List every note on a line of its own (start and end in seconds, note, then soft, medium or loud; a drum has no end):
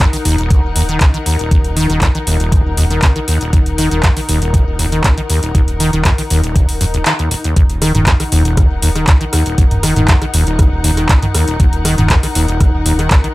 0.00 0.07 F2 loud
0.00 7.55 D#4 medium
0.00 7.56 A#4 medium
0.00 7.56 F#5 medium
0.00 kick loud
0.00 closed hi-hat medium
0.13 0.17 D#3 medium
0.13 open hi-hat medium
0.25 0.60 D#1 medium
0.25 0.36 D#2 loud
0.25 open hi-hat loud
0.38 0.52 D#1 medium
0.38 closed hi-hat medium
0.50 0.61 D#2 medium
0.50 kick loud
0.50 closed hi-hat medium
0.64 0.98 D#1 medium
0.76 0.83 D#2 loud
0.76 open hi-hat loud
0.89 0.99 D#3 medium
0.89 closed hi-hat soft
1.00 1.12 C#2 medium
1.00 1.08 D#2 medium
1.00 kick loud
1.00 clap loud
1.00 closed hi-hat medium
1.14 1.18 D#3 medium
1.14 closed hi-hat soft
1.26 1.37 D#2 loud
1.26 open hi-hat loud
1.39 1.49 D#1 medium
1.39 closed hi-hat medium
1.51 1.86 D#1 loud
1.51 1.59 D#2 medium
1.51 kick loud
1.51 closed hi-hat medium
1.64 closed hi-hat soft
1.77 1.87 D#3 loud
1.77 open hi-hat loud
1.90 2.00 D#1 loud
1.90 2.00 D#3 medium
1.90 closed hi-hat medium
2.01 2.09 F2 loud
2.01 kick loud
2.01 clap loud
2.01 closed hi-hat medium
2.15 2.19 D#3 medium
2.15 closed hi-hat soft
2.27 2.62 D#1 medium
2.27 2.38 D#2 loud
2.27 open hi-hat loud
2.40 2.54 D#1 medium
2.40 closed hi-hat medium
2.52 2.63 D#2 medium
2.52 kick loud
2.52 closed hi-hat medium
2.65 2.99 D#1 medium
2.77 2.85 D#2 loud
2.77 open hi-hat loud
2.90 3.01 D#3 medium
2.90 closed hi-hat medium
3.02 3.14 C#2 medium
3.02 3.10 D#2 medium
3.02 kick loud
3.02 clap loud
3.02 closed hi-hat medium
3.16 3.20 D#3 medium
3.16 closed hi-hat soft
3.28 3.39 D#2 loud
3.28 open hi-hat loud
3.41 3.51 D#1 medium
3.41 closed hi-hat medium
3.53 3.88 D#1 loud
3.53 3.60 D#2 medium
3.53 kick loud
3.53 closed hi-hat medium
3.66 closed hi-hat soft
3.78 3.89 D#3 loud
3.78 open hi-hat loud
3.91 4.01 D#1 loud
3.91 4.01 D#3 medium
3.91 closed hi-hat medium
4.03 4.11 F2 loud
4.03 kick loud
4.03 clap loud
4.03 closed hi-hat medium
4.17 4.21 D#3 medium
4.17 open hi-hat medium
4.29 4.64 D#1 medium
4.29 4.39 D#2 loud
4.29 open hi-hat loud
4.42 4.55 D#1 medium
4.42 closed hi-hat medium
4.54 4.65 D#2 medium
4.54 kick loud
4.54 closed hi-hat medium
4.67 5.01 D#1 medium
4.79 4.86 D#2 loud
4.79 open hi-hat loud
4.92 5.02 D#3 medium
4.92 closed hi-hat medium
5.04 5.15 C#2 medium
5.04 5.12 D#2 medium
5.04 kick loud
5.04 clap loud
5.04 closed hi-hat medium
5.17 5.21 D#3 medium
5.17 closed hi-hat soft
5.30 5.40 D#2 loud
5.30 open hi-hat loud
5.43 5.53 D#1 medium
5.43 closed hi-hat medium
5.55 5.90 D#1 loud
5.55 5.62 D#2 medium
5.55 kick loud
5.55 closed hi-hat medium
5.68 closed hi-hat soft
5.80 5.91 D#3 loud
5.80 open hi-hat loud
5.93 6.03 D#1 loud
5.93 6.03 D#3 medium
5.93 closed hi-hat medium
6.05 6.12 F2 loud
6.05 kick loud
6.05 clap loud
6.05 closed hi-hat medium
6.18 6.22 D#3 medium
6.18 open hi-hat medium
6.30 6.65 D#1 medium
6.30 6.41 D#2 loud
6.30 open hi-hat loud
6.43 6.57 D#1 medium
6.43 closed hi-hat medium
6.56 6.66 D#2 medium
6.56 kick loud
6.56 closed hi-hat medium
6.69 7.03 D#1 medium
6.69 open hi-hat medium
6.81 6.85 F2 loud
6.81 open hi-hat loud
6.94 6.98 C#2 medium
6.94 closed hi-hat medium
7.05 7.13 D#3 medium
7.05 clap loud
7.05 closed hi-hat medium
7.19 7.29 D#2 medium
7.19 closed hi-hat soft
7.31 7.36 D#1 medium
7.31 open hi-hat loud
7.44 7.54 D#2 medium
7.44 closed hi-hat medium
7.56 7.91 D#1 loud
7.56 13.34 D#4 medium
7.56 kick loud
7.56 closed hi-hat medium
7.70 closed hi-hat soft
7.77 13.34 A#4 medium
7.82 7.92 D#3 loud
7.82 cross-stick medium
7.82 open hi-hat loud
7.87 13.34 F#5 medium
7.95 8.05 D#1 loud
7.95 8.05 D#3 medium
7.95 closed hi-hat medium
7.95 mid tom medium
8.06 8.14 F2 loud
8.06 kick loud
8.06 clap loud
8.06 closed hi-hat medium
8.20 8.24 D#3 medium
8.20 cross-stick soft
8.20 open hi-hat medium
8.32 8.67 D#1 medium
8.32 8.43 D#2 loud
8.32 open hi-hat loud
8.45 8.59 D#1 medium
8.45 closed hi-hat medium
8.57 8.68 D#2 medium
8.57 kick loud
8.57 cross-stick medium
8.57 closed hi-hat medium
8.70 9.04 D#1 medium
8.82 8.90 D#2 loud
8.82 open hi-hat loud
8.95 9.06 D#3 medium
8.95 cross-stick soft
8.95 closed hi-hat medium
9.07 9.19 C#2 medium
9.07 9.15 D#2 medium
9.07 kick loud
9.07 clap loud
9.07 closed hi-hat medium
9.21 9.25 D#3 medium
9.21 closed hi-hat soft
9.33 9.44 D#2 loud
9.33 cross-stick medium
9.33 open hi-hat loud
9.46 9.56 D#1 medium
9.46 closed hi-hat medium
9.58 9.93 D#1 loud
9.58 9.65 D#2 medium
9.58 kick loud
9.58 closed hi-hat medium
9.71 closed hi-hat soft
9.71 mid tom medium
9.83 9.94 D#3 loud
9.83 cross-stick medium
9.83 open hi-hat loud
9.96 10.06 D#1 loud
9.96 10.06 D#3 medium
9.96 closed hi-hat medium
9.96 mid tom medium
10.08 10.16 F2 loud
10.08 kick loud
10.08 clap loud
10.08 closed hi-hat medium
10.22 10.26 D#3 medium
10.22 cross-stick soft
10.22 closed hi-hat soft
10.34 10.69 D#1 medium
10.34 10.45 D#2 loud
10.34 open hi-hat loud
10.47 10.60 D#1 medium
10.47 closed hi-hat medium
10.59 10.70 D#2 medium
10.59 kick loud
10.59 cross-stick medium
10.59 closed hi-hat medium
10.72 11.06 D#1 medium
10.84 10.91 D#2 loud
10.84 open hi-hat loud
10.97 11.07 D#3 medium
10.97 cross-stick soft
10.97 closed hi-hat medium
11.09 11.20 C#2 medium
11.09 11.17 D#2 medium
11.09 kick loud
11.09 clap loud
11.09 closed hi-hat medium
11.22 11.26 D#3 medium
11.22 closed hi-hat soft
11.22 mid tom medium
11.35 11.45 D#2 loud
11.35 cross-stick medium
11.35 open hi-hat loud
11.48 11.58 D#1 medium
11.48 closed hi-hat medium
11.60 11.95 D#1 loud
11.60 11.67 D#2 medium
11.60 kick loud
11.60 closed hi-hat medium
11.73 closed hi-hat soft
11.85 11.96 D#3 loud
11.85 cross-stick medium
11.85 open hi-hat loud
11.98 12.08 D#1 loud
11.98 12.08 D#3 medium
11.98 closed hi-hat medium
11.98 mid tom medium
12.10 12.17 F2 loud
12.10 kick loud
12.10 clap loud
12.10 closed hi-hat medium
12.23 12.27 D#3 medium
12.23 cross-stick soft
12.23 open hi-hat medium
12.35 12.70 D#1 medium
12.35 12.46 D#2 loud
12.35 open hi-hat loud
12.48 12.62 D#1 medium
12.48 closed hi-hat medium
12.60 12.71 D#2 medium
12.60 kick loud
12.60 cross-stick medium
12.60 closed hi-hat medium
12.74 13.08 D#1 medium
12.86 12.93 D#2 loud
12.86 open hi-hat loud
12.99 13.09 D#3 medium
12.99 cross-stick soft
12.99 closed hi-hat medium
13.10 13.22 C#2 medium
13.10 13.18 D#2 medium
13.10 kick loud
13.10 clap loud
13.10 closed hi-hat medium
13.24 13.28 D#3 medium
13.24 closed hi-hat soft